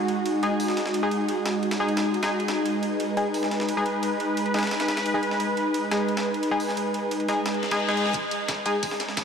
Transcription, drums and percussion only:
0.08 ride medium
0.26 ride medium
0.43 ride medium
0.60 open hi-hat medium
0.68 snare soft
0.77 snare medium
0.77 ride medium
0.86 snare medium
0.94 ride medium
1.11 ride medium
1.28 ride medium
1.46 snare loud
1.46 ride medium
1.63 ride medium
1.71 snare loud
1.71 ride medium
1.89 ride medium
1.97 snare loud
1.97 ride medium
2.14 ride medium
2.23 snare loud
2.23 ride medium
2.40 ride medium
2.48 snare loud
2.48 ride medium
2.66 ride medium
2.83 ride medium
3.00 ride medium
3.17 ride medium
3.34 open hi-hat medium
3.43 snare soft
3.51 snare medium
3.51 ride medium
3.60 snare medium
3.69 ride medium
3.86 ride medium
4.03 ride medium
4.20 ride medium
4.37 ride medium
4.46 ride soft
4.54 snare medium
4.54 ride medium
4.58 snare medium
4.58 ride medium
4.63 snare medium
4.63 ride medium
4.67 snare medium
4.67 ride medium
4.71 snare loud
4.71 ride medium
4.80 snare loud
4.80 ride medium
4.88 snare loud
4.88 ride medium
4.97 snare loud
4.97 ride medium
5.06 ride medium
5.23 ride medium
5.31 snare soft
5.40 ride medium
5.57 ride medium
5.74 ride medium
5.91 snare loud
5.91 ride medium
6.09 ride medium
6.17 snare loud
6.17 ride medium
6.34 ride medium
6.43 ride medium
6.60 open hi-hat medium
6.69 snare soft
6.77 ride medium
6.94 ride medium
7.11 ride medium
7.20 ride soft
7.29 snare medium
7.29 ride medium
7.46 snare loud
7.46 ride medium
7.54 ride soft
7.63 snare soft
7.63 ride medium
7.71 snare loud
7.71 ride medium
7.80 ride soft
7.89 snare soft
7.89 ride medium
7.97 ride medium
8.06 snare soft
8.14 kick loud
8.14 closed hi-hat loud
8.14 ride medium
8.31 closed hi-hat medium
8.31 ride medium
8.48 kick medium
8.48 snare loud
8.48 closed hi-hat medium
8.48 ride medium
8.66 closed hi-hat medium
8.66 ride medium
8.83 kick loud
8.83 closed hi-hat medium
8.83 open hi-hat medium
8.91 snare soft
9.00 snare medium
9.00 closed hi-hat medium
9.00 ride medium
9.09 snare medium
9.17 kick medium
9.17 snare loud
9.17 closed hi-hat loud
9.17 ride medium

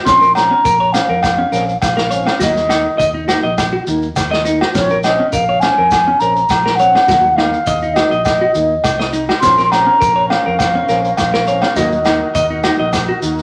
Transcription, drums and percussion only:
0.07 kick medium
0.07 snare medium
0.07 shekere medium
0.22 shekere soft
0.35 snare medium
0.35 low agogo medium
0.35 shekere medium
0.65 kick medium
0.65 shekere loud
0.94 snare medium
0.94 low agogo medium
0.94 shekere medium
1.23 kick medium
1.23 snare medium
1.23 low agogo medium
1.23 shekere medium
1.53 snare soft
1.53 shekere medium
1.69 shekere soft
1.82 kick medium
1.82 snare medium
1.82 low agogo medium
1.82 shekere medium
1.98 snare medium
2.11 shekere medium
2.27 snare medium
2.27 low agogo medium
2.40 kick medium
2.40 snare medium
2.40 shekere loud
2.56 snare soft
2.56 shekere soft
2.70 snare medium
2.70 low agogo medium
2.70 shekere medium
2.99 kick medium
2.99 shekere loud
3.29 snare medium
3.29 low agogo medium
3.29 shekere medium
3.58 kick medium
3.58 snare medium
3.58 low agogo medium
3.58 shekere medium
3.87 shekere medium
4.02 shekere soft
4.16 kick medium
4.16 snare medium
4.16 low agogo medium
4.16 shekere medium
4.33 snare medium
4.45 shekere medium
4.61 snare medium
4.61 low agogo medium
4.75 kick medium
4.75 snare medium
4.75 shekere medium
4.90 shekere soft
5.03 snare medium
5.03 low agogo medium
5.03 shekere medium
5.33 kick medium
5.33 shekere medium
5.62 snare medium
5.62 low agogo medium
5.62 shekere medium
5.91 kick medium
5.91 snare medium
5.91 low agogo medium
5.91 shekere medium
6.20 shekere medium
6.36 shekere soft
6.49 kick medium
6.49 snare medium
6.49 low agogo medium
6.49 shekere medium
6.66 snare medium
6.79 shekere medium
6.95 snare medium
6.95 low agogo medium
7.08 kick medium
7.08 snare medium
7.08 shekere medium
7.38 snare medium
7.38 low agogo medium
7.53 shekere soft
7.66 kick medium
7.66 shekere medium
7.82 shekere soft
7.96 snare medium
7.96 low agogo medium
7.96 shekere medium
8.11 shekere soft
8.25 kick medium
8.25 snare medium
8.25 low agogo medium
8.25 shekere medium
8.55 shekere medium
8.84 kick medium
8.84 snare medium
8.84 low agogo medium
8.84 shekere medium
9.00 snare medium
9.00 shekere soft
9.13 shekere medium
9.29 snare medium
9.29 low agogo medium
9.42 kick medium
9.42 snare medium
9.42 shekere medium
9.58 snare soft
9.58 shekere soft
9.72 snare medium
9.72 low agogo medium
9.72 shekere medium
10.01 kick medium
10.01 shekere medium
10.30 snare medium
10.30 low agogo medium
10.59 kick medium
10.59 snare medium
10.59 low agogo medium
10.59 shekere medium
10.89 snare soft
10.89 shekere medium
11.04 shekere soft
11.17 kick medium
11.17 snare medium
11.17 low agogo medium
11.17 shekere medium
11.33 snare medium
11.47 shekere medium
11.62 snare medium
11.62 low agogo medium
11.76 kick medium
11.76 snare medium
11.76 shekere medium
11.92 shekere soft
12.05 snare medium
12.05 low agogo medium
12.05 shekere medium
12.35 kick medium
12.35 shekere medium
12.64 snare medium
12.64 low agogo medium
12.64 shekere medium
12.93 kick medium
12.93 snare medium
12.93 low agogo medium
12.93 shekere medium
13.22 shekere medium
13.39 shekere soft

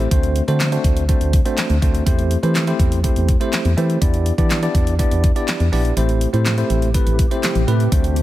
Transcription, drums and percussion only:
0.11 kick loud
0.11 closed hi-hat loud
0.23 closed hi-hat medium
0.36 closed hi-hat medium
0.48 closed hi-hat medium
0.60 snare medium
0.60 clap loud
0.60 closed hi-hat medium
0.72 closed hi-hat medium
0.84 kick loud
0.84 closed hi-hat medium
0.97 closed hi-hat medium
1.09 kick medium
1.09 closed hi-hat loud
1.21 closed hi-hat medium
1.33 kick loud
1.33 closed hi-hat medium
1.46 closed hi-hat medium
1.58 snare medium
1.58 clap loud
1.58 closed hi-hat loud
1.70 closed hi-hat medium
1.82 kick medium
1.82 closed hi-hat medium
1.95 closed hi-hat medium
2.07 kick loud
2.07 closed hi-hat loud
2.19 closed hi-hat medium
2.31 closed hi-hat medium
2.43 closed hi-hat medium
2.55 snare medium
2.55 clap loud
2.55 closed hi-hat medium
2.67 closed hi-hat medium
2.79 kick loud
2.79 closed hi-hat medium
2.92 closed hi-hat medium
3.04 kick medium
3.04 closed hi-hat medium
3.16 closed hi-hat medium
3.29 kick loud
3.29 closed hi-hat medium
3.41 closed hi-hat medium
3.53 snare medium
3.53 clap loud
3.53 closed hi-hat loud
3.65 closed hi-hat medium
3.78 closed hi-hat medium
3.90 closed hi-hat medium
4.02 kick loud
4.02 closed hi-hat loud
4.14 closed hi-hat medium
4.26 closed hi-hat medium
4.38 kick loud
4.38 closed hi-hat medium
4.51 snare medium
4.51 clap loud
4.51 closed hi-hat medium
4.63 closed hi-hat medium
4.75 kick loud
4.75 closed hi-hat medium
4.87 closed hi-hat medium
4.99 kick medium
4.99 closed hi-hat medium
5.11 closed hi-hat medium
5.24 kick loud
5.24 closed hi-hat medium
5.36 closed hi-hat soft
5.48 snare medium
5.48 clap loud
5.48 closed hi-hat loud
5.60 closed hi-hat medium
5.73 open hi-hat medium
5.85 closed hi-hat medium
5.97 closed hi-hat loud
6.09 closed hi-hat medium
6.21 closed hi-hat medium
6.34 closed hi-hat medium
6.46 snare loud
6.46 clap loud
6.46 closed hi-hat medium
6.58 closed hi-hat medium
6.70 closed hi-hat medium
6.82 closed hi-hat medium
6.94 kick medium
6.94 closed hi-hat loud
7.07 closed hi-hat medium
7.19 kick loud
7.19 closed hi-hat medium
7.31 closed hi-hat medium
7.43 snare medium
7.43 clap loud
7.43 closed hi-hat loud
7.55 closed hi-hat medium
7.68 closed hi-hat medium
7.80 closed hi-hat medium
7.92 kick loud
7.92 closed hi-hat loud
8.04 closed hi-hat medium
8.16 closed hi-hat medium

